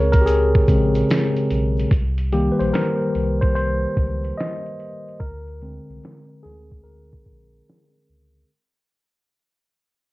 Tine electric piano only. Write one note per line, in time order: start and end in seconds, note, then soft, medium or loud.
0.00 0.67 C#3 medium
0.00 0.68 G#3 medium
0.00 0.68 C4 medium
0.00 0.26 G#4 medium
0.00 0.11 A#4 loud
0.00 1.93 C#5 loud
0.12 0.17 A#4 medium
0.21 0.26 G4 medium
0.26 1.46 G#4 medium
0.68 1.05 C#3 soft
0.68 1.06 G#3 soft
0.68 1.06 C4 soft
2.32 5.16 D#3 soft
2.32 5.16 G3 medium
2.32 5.17 A#3 medium
2.32 2.53 G4 medium
2.52 2.59 B4 medium
2.60 2.66 C5 medium
2.74 3.44 A#4 medium
3.41 3.54 C5 medium
3.55 4.40 C5 loud
4.38 5.22 D#5 medium
5.20 6.47 A#4 medium
5.62 6.21 D3 soft
5.62 6.21 G#3 soft
5.62 6.21 C4 medium
6.43 6.85 G#4 medium
6.84 8.03 A#4 medium